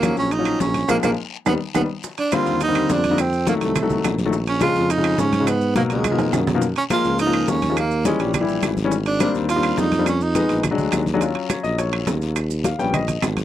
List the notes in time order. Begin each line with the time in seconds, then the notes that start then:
Already playing: D#2 A#3
0.03 F3 F#3 C#4, high bongo, high conga, high timbale, short guiro, claves, maracas
0.16 A#1 C#4, high conga, short guiro, maracas
0.31 D#4, high bongo, high conga, high timbale, long guiro, maracas
0.39 F3 F#3 C#4
0.45 high conga, high timbale, claves, maracas
0.60 A#1 C#4, high bongo, low bongo, high conga, low timbale, short guiro, maracas
0.74 high conga, high timbale, short guiro, maracas
0.88 A#1 F3 G#3 A#3, low bongo, high conga, high timbale, long guiro, claves, maracas
1.03 A#1 F3 G#3 A#3, low bongo, high conga, high timbale, long guiro, claves, maracas
1.46 D#2 D#3 G3 B3, low bongo, high conga, high timbale, long guiro, claves, maracas
1.74 D#2 D#3 G3 B3, low bongo, high conga, high timbale, long guiro, claves, maracas
2.03 high bongo, high conga, long guiro, maracas
2.18 D4, high conga, high timbale, maracas
2.32 D3 G3 A#3 C4 F4, high bongo, high conga, high timbale, short guiro, claves, maracas
2.46 D#2, high conga, short guiro, maracas
2.61 D#4, high bongo, high conga, high timbale, long guiro, maracas
2.68 D3 G3 A#3 C4
2.75 high conga, high timbale, claves, maracas
2.89 F2 D4, high bongo, low bongo, high conga, low timbale, short guiro, maracas
3.04 high conga, high timbale, short guiro, maracas
3.11 D3 G3 A#3 D#4
3.18 C4, high bongo, high conga, high timbale, long guiro, claves, maracas
3.33 high conga, maracas
3.47 D#3 F#3 A3 A#3, high bongo, high conga, high timbale, short guiro, maracas
3.61 C2 A3, high bongo, high conga, high timbale, short guiro, maracas
3.76 high bongo, high conga, low conga, high timbale, long guiro, claves, maracas
3.82 D#3 F#3 A3
3.90 high bongo, high conga, low conga, maracas
4.04 A#1, high bongo, low bongo, high conga, high timbale, low timbale, short guiro, claves, maracas
4.18 high bongo, high conga, short guiro, maracas
4.25 D#3 F#3 A3
4.33 high bongo, high conga, long guiro, maracas
4.47 C#4, high conga, high timbale, maracas
4.61 C#3 F3 G#3 F4, high bongo, high conga, high timbale, short guiro, claves, maracas
4.75 F2, high conga, short guiro, maracas
4.90 D#4, high bongo, high conga, high timbale, long guiro, maracas
4.97 C#3 F3 G#3
5.04 high conga, high timbale, claves, maracas
5.18 G#2 C#4, high bongo, low bongo, high conga, low timbale, short guiro, maracas
5.33 high conga, high timbale, short guiro, maracas
5.40 C#3 F3 G#3
5.47 B3, high bongo, high conga, high timbale, long guiro, claves, maracas
5.61 high conga, maracas
5.76 B2 F#3 A#3, high bongo, high conga, high timbale, short guiro, maracas
5.90 C#2 G#3, high bongo, high conga, high timbale, short guiro, maracas
6.04 high bongo, high conga, high timbale, long guiro, claves, maracas
6.11 B2 D#3 F3 A#3
6.18 F2, high bongo, high conga, high timbale, maracas
6.32 F#2, high bongo, low bongo, low conga, high timbale, short guiro, claves, maracas
6.47 high bongo, low conga, low timbale, short guiro, maracas
6.55 B2 D#3 F3 A#3
6.62 high bongo, high conga, maracas
6.76 C#4, high conga, high timbale, maracas
6.90 F3 G#3 A#3 F4, high bongo, high conga, high timbale, short guiro, claves, maracas
7.04 C#2, high conga, short guiro, maracas
7.19 D#4, high bongo, high conga, high timbale, long guiro, maracas
7.26 F3 G#3 A#3
7.33 high conga, high timbale, claves, maracas
7.47 D#2 C#4, high bongo, low bongo, high conga, short guiro, maracas
7.62 high conga, high timbale, short guiro, maracas
7.70 F3 G#3 A#3
7.77 A#3, high bongo, high conga, high timbale, long guiro, claves, maracas
7.91 high conga, maracas
8.05 E3 G3 G#3 C#4, high bongo, high conga, high timbale, short guiro, maracas
8.19 A#1 G3, high bongo, high conga, high timbale, short guiro, maracas
8.34 high bongo, high conga, low conga, high timbale, long guiro, claves, maracas
8.41 E3 G3 E4
8.48 A#1, high bongo, high conga, maracas
8.62 G#1, high bongo, low bongo, high conga, high timbale, short guiro, claves, maracas
8.77 high bongo, high conga, short guiro, maracas
8.84 E3 G3 C#4
8.91 high bongo, high conga, long guiro, maracas
9.06 D4, high conga, high timbale, maracas
9.20 G3 A#3 C4 D4, high bongo, high conga, high timbale, short guiro, claves, maracas
9.34 D#2, high conga, short guiro, maracas
9.49 F4, high bongo, high conga, high timbale, long guiro, maracas
9.56 G3 A#3 C4 D4
9.63 high conga, high timbale, claves, maracas
9.77 F2 D#4, high bongo, low bongo, high conga, low timbale, short guiro, maracas
9.92 high conga, high timbale, short guiro, maracas
9.99 G3 A#3 C4 D4
10.06 C#4, high bongo, high conga, high timbale, long guiro, claves, maracas
10.21 D#4, high conga, maracas
10.35 G#3 B3 D#4, high bongo, high conga, high timbale, short guiro, maracas
10.49 A#1, high bongo, high conga, high timbale, short guiro, maracas
10.63 high bongo, high conga, low conga, high timbale, long guiro, claves, maracas
10.71 F#3 G#3 D4
10.78 D2, high bongo, high conga, low conga, maracas
10.92 D#2, high bongo, low bongo, high conga, high timbale, short guiro, claves, maracas
11.06 high bongo, high conga, short guiro, maracas
11.14 F#3 G#3 D4
11.20 F#3 C#4 F4, high bongo, high conga, high timbale, long guiro, maracas
11.35 high conga, high timbale
11.49 C#5, high bongo, high conga, high timbale, low timbale, short guiro, claves, maracas
11.63 A#1 D#5, high conga, short guiro, maracas
11.78 C#5, high bongo, high conga, high timbale, long guiro, maracas
11.93 high conga, high timbale, claves
12.07 D#2, high bongo, low bongo, high conga, high timbale, low timbale, short guiro, maracas
12.21 high conga, short guiro, maracas
12.36 high bongo, high conga, high timbale, long guiro, claves, maracas
12.50 high bongo, high conga, maracas
12.64 F5, high bongo, high conga, high timbale, low timbale, short guiro, maracas
12.79 A#1 G3 B3 C#4 G5, high bongo, short guiro, maracas
12.94 D#5, high bongo, high conga, low conga, high timbale, long guiro, claves, maracas
13.08 high bongo, high conga, low conga, high timbale, maracas
13.22 G#1, high bongo, low bongo, high conga, high timbale, low timbale, short guiro, claves, maracas
13.37 high conga, high timbale, short guiro, maracas